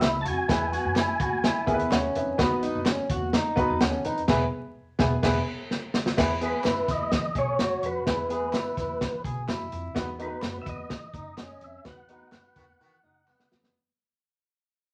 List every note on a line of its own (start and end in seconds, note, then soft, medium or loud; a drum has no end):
0.00 0.26 C#2 medium
0.00 0.13 B3 medium
0.00 0.14 E4 medium
0.00 0.19 E4 medium
0.00 0.14 G#4 medium
0.00 0.14 B4 medium
0.00 0.17 E5 medium
0.00 snare loud
0.00 clap medium
0.00 closed hi-hat medium
0.00 tambourine medium
0.13 high conga medium
0.21 0.42 F2 medium
0.21 0.42 F#4 medium
0.21 0.27 A5 medium
0.25 1.65 G#5 loud
0.25 closed hi-hat medium
0.25 tambourine medium
0.25 muted conga soft
0.25 low conga medium
0.48 0.75 E2 loud
0.48 0.97 B3 medium
0.48 0.66 E4 medium
0.48 0.97 E4 medium
0.48 0.98 G#4 medium
0.48 0.98 B4 medium
0.48 kick loud
0.48 snare loud
0.48 closed hi-hat medium
0.48 tambourine soft
0.48 low conga medium
0.72 0.90 F#4 medium
0.72 closed hi-hat medium
0.72 tambourine medium
0.85 1.11 F#2 medium
0.85 high conga medium
0.96 1.13 E4 medium
0.96 snare loud
0.96 clap medium
0.96 closed hi-hat medium
0.96 tambourine medium
1.09 high conga medium
1.20 1.46 E2 medium
1.20 1.37 F#4 medium
1.20 1.42 B5 medium
1.20 kick medium
1.20 closed hi-hat medium
1.20 tambourine medium
1.20 low conga medium
1.32 high conga medium
1.43 1.88 E4 medium
1.43 1.66 G#5 medium
1.43 snare loud
1.43 closed hi-hat medium
1.43 tambourine soft
1.67 1.76 D#2 medium
1.67 2.03 B3 medium
1.67 1.91 E4 medium
1.67 1.91 G#4 medium
1.67 1.74 A#4 medium
1.67 1.90 G#5 medium
1.67 kick medium
1.67 closed hi-hat medium
1.67 tambourine soft
1.67 muted conga soft
1.67 high conga medium
1.74 1.95 B4 loud
1.79 1.88 E2 medium
1.79 closed hi-hat soft
1.91 2.09 D#2 medium
1.91 2.36 C#4 medium
1.91 2.15 E4 medium
1.91 2.14 C#5 medium
1.91 2.14 F#5 medium
1.91 snare loud
1.91 clap medium
1.91 closed hi-hat medium
1.91 tambourine medium
2.04 high conga medium
2.15 2.33 F2 medium
2.15 2.38 D#4 medium
2.15 2.38 B4 medium
2.15 2.38 E5 medium
2.15 closed hi-hat medium
2.15 tambourine medium
2.15 low conga medium
2.38 2.65 E2 loud
2.38 2.86 B3 medium
2.38 2.56 B3 medium
2.38 2.87 D#4 medium
2.38 2.87 F#4 medium
2.38 2.87 B4 loud
2.38 kick loud
2.38 snare loud
2.38 closed hi-hat medium
2.38 tambourine soft
2.63 2.80 D#4 medium
2.63 closed hi-hat medium
2.63 tambourine medium
2.63 muted conga soft
2.75 3.01 F#2 medium
2.75 high conga medium
2.86 3.03 C#4 medium
2.86 snare medium
2.86 clap medium
2.86 closed hi-hat medium
2.86 tambourine medium
2.99 high conga medium
3.10 3.36 E2 medium
3.10 3.28 F#4 medium
3.10 kick medium
3.10 closed hi-hat medium
3.10 tambourine medium
3.10 low conga medium
3.22 high conga medium
3.33 3.79 D#4 medium
3.33 snare loud
3.33 closed hi-hat medium
3.33 tambourine medium
3.56 3.66 D#2 medium
3.56 3.92 B3 loud
3.56 3.81 D#4 medium
3.56 3.81 F#4 medium
3.56 3.81 B4 loud
3.56 kick medium
3.56 closed hi-hat medium
3.56 tambourine soft
3.56 muted conga soft
3.56 high conga medium
3.70 3.78 E2 medium
3.81 3.99 D#2 loud
3.81 3.98 C#4 medium
3.81 4.04 A4 medium
3.81 4.04 F#5 medium
3.81 snare loud
3.81 clap medium
3.81 closed hi-hat medium
3.81 tambourine medium
3.94 high conga medium
4.04 4.23 F2 medium
4.04 4.22 D#4 medium
4.04 4.28 D#4 soft
4.04 4.27 B4 medium
4.04 closed hi-hat medium
4.04 tambourine medium
4.04 low conga medium
4.17 closed hi-hat soft
4.28 4.45 E1 medium
4.28 4.44 B3 loud
4.28 4.44 E4 loud
4.28 4.45 G#4 loud
4.28 4.45 B4 loud
4.28 kick loud
4.28 snare loud
4.28 crash medium
4.99 5.15 E1 loud
4.99 5.15 B3 medium
4.99 5.15 E4 medium
4.99 5.15 G#4 medium
4.99 5.16 B4 medium
4.99 5.15 G#5 medium
4.99 kick loud
4.99 snare loud
5.23 5.39 E1 medium
5.23 5.39 B3 loud
5.23 5.39 E4 medium
5.23 5.40 G#4 medium
5.23 5.40 B4 medium
5.23 5.39 G#5 medium
5.23 kick loud
5.23 snare loud
5.23 crash medium
5.71 snare medium
5.94 snare medium
6.06 snare medium
6.17 6.53 E2 medium
6.17 6.29 B3 medium
6.17 6.34 E4 medium
6.17 6.30 E4 medium
6.17 6.30 G#4 medium
6.17 6.30 B4 medium
6.17 kick loud
6.17 snare loud
6.17 crash medium
6.41 6.89 B3 medium
6.41 6.89 E4 medium
6.41 6.58 G#4 medium
6.41 6.90 G#4 medium
6.41 6.90 B4 medium
6.41 closed hi-hat medium
6.41 tambourine soft
6.41 muted conga soft
6.46 6.92 B4 loud
6.53 high conga medium
6.64 6.83 F#2 medium
6.64 7.09 E4 medium
6.64 snare medium
6.64 clap medium
6.64 closed hi-hat medium
6.64 tambourine medium
6.77 high conga medium
6.88 7.06 E2 medium
6.88 7.38 D#5 loud
6.88 kick medium
6.88 snare soft
6.88 closed hi-hat medium
6.88 tambourine medium
6.88 muted conga soft
6.88 low conga medium
7.00 high conga medium
7.12 7.30 E3 medium
7.12 kick loud
7.12 snare loud
7.12 closed hi-hat medium
7.12 tambourine soft
7.35 7.53 B1 medium
7.35 7.53 G#4 medium
7.35 7.86 C#5 loud
7.35 kick medium
7.35 closed hi-hat medium
7.35 tambourine soft
7.35 high conga medium
7.59 7.77 F#2 medium
7.59 8.04 F#4 medium
7.59 snare loud
7.59 clap medium
7.59 closed hi-hat medium
7.59 tambourine medium
7.71 high conga medium
7.83 8.00 F2 loud
7.83 9.22 B4 loud
7.83 closed hi-hat medium
7.83 tambourine medium
8.06 8.54 E2 loud
8.06 8.18 B3 medium
8.06 8.19 E4 medium
8.06 8.24 E4 medium
8.06 8.19 G#4 medium
8.06 8.19 B4 medium
8.06 kick loud
8.06 snare loud
8.06 closed hi-hat medium
8.06 tambourine soft
8.06 muted conga soft
8.06 low conga medium
8.29 8.77 B3 medium
8.29 8.78 E4 medium
8.29 8.78 G#4 medium
8.29 8.47 G#4 medium
8.29 8.79 B4 medium
8.29 closed hi-hat medium
8.29 tambourine medium
8.29 muted conga soft
8.42 high conga medium
8.53 8.71 F#2 medium
8.53 8.98 E4 medium
8.53 snare loud
8.53 clap medium
8.53 closed hi-hat medium
8.53 tambourine medium
8.66 high conga medium
8.77 9.04 E2 medium
8.77 kick medium
8.77 snare soft
8.77 closed hi-hat medium
8.77 tambourine medium
8.77 low conga medium
8.89 high conga medium
9.01 9.19 E3 loud
9.01 kick loud
9.01 snare loud
9.01 closed hi-hat medium
9.01 tambourine soft
9.24 9.42 B1 medium
9.24 9.42 G#4 medium
9.24 kick medium
9.24 closed hi-hat medium
9.24 tambourine soft
9.24 high conga medium
9.48 9.66 F#2 medium
9.48 9.93 E4 medium
9.48 snare loud
9.48 clap medium
9.48 closed hi-hat medium
9.48 tambourine medium
9.60 high conga medium
9.72 9.90 F2 loud
9.72 closed hi-hat medium
9.72 tambourine medium
9.95 10.31 E2 loud
9.95 10.07 B3 loud
9.95 10.12 B3 medium
9.95 10.08 D#4 medium
9.95 10.08 F#4 medium
9.95 10.08 B4 loud
9.95 kick loud
9.95 snare loud
9.95 closed hi-hat medium
9.95 tambourine soft
10.19 10.67 B3 medium
10.19 10.67 D#4 medium
10.19 10.36 D#4 medium
10.19 10.68 F#4 medium
10.19 10.26 A4 medium
10.19 10.58 B4 medium
10.19 closed hi-hat medium
10.19 tambourine soft
10.27 10.71 B4 medium
10.32 high conga medium
10.43 10.60 F#2 medium
10.43 10.87 B3 medium
10.43 snare loud
10.43 clap medium
10.43 closed hi-hat medium
10.43 tambourine medium
10.55 high conga medium
10.62 10.68 E5 medium
10.66 10.84 E2 medium
10.66 11.66 D#5 medium
10.66 kick medium
10.66 closed hi-hat medium
10.66 tambourine medium
10.66 muted conga soft
10.66 low conga medium
10.78 high conga medium
10.90 11.08 E3 medium
10.90 kick medium
10.90 snare loud
10.90 closed hi-hat medium
10.90 tambourine soft
10.90 muted conga soft
11.13 11.40 F#1 medium
11.13 11.31 D#4 medium
11.13 kick loud
11.13 closed hi-hat medium
11.13 tambourine soft
11.13 muted conga soft
11.13 high conga medium
11.37 11.55 F#2 medium
11.37 11.82 C#4 medium
11.37 snare loud
11.37 clap medium
11.37 closed hi-hat medium
11.37 tambourine medium
11.49 high conga medium
11.61 11.79 F2 loud
11.61 11.85 E5 loud
11.61 closed hi-hat medium
11.61 tambourine medium
11.85 12.20 E2 loud
11.85 11.97 B3 medium
11.85 12.02 B3 medium
11.85 11.97 D#4 medium
11.85 11.97 F#4 medium
11.85 11.98 B4 medium
11.85 13.49 F#5 loud
11.85 kick loud
11.85 snare loud
11.85 closed hi-hat medium
12.09 12.57 B3 medium
12.09 12.26 D#4 medium
12.09 12.57 D#4 medium
12.09 12.58 F#4 medium
12.09 12.58 B4 medium
12.09 closed hi-hat medium
12.09 tambourine medium
12.09 muted conga soft
12.20 high conga medium
12.32 12.50 F#2 loud
12.32 12.77 B3 medium
12.32 snare medium
12.32 clap medium
12.32 closed hi-hat medium
12.32 tambourine medium
12.44 high conga medium
12.56 12.74 E2 medium
12.56 12.64 D#3 loud
12.56 12.64 B3 medium
12.56 12.64 F#4 loud
12.56 kick medium
12.56 closed hi-hat medium
12.56 tambourine medium
12.56 muted conga soft
12.56 low conga medium
12.68 high conga medium
12.80 12.96 D#3 medium
12.80 12.98 E3 medium
12.80 12.96 B3 medium
12.80 12.96 F#4 loud
12.80 tambourine soft
13.03 13.29 F#1 medium
13.03 13.21 D#4 medium
13.03 muted conga soft
13.03 high conga medium
13.28 13.45 F#2 medium
13.28 13.72 B3 medium
13.28 clap medium
13.28 tambourine medium
13.39 snare medium
13.39 high conga medium
13.51 13.69 F2 loud
13.51 snare loud
13.51 tambourine medium
13.64 snare medium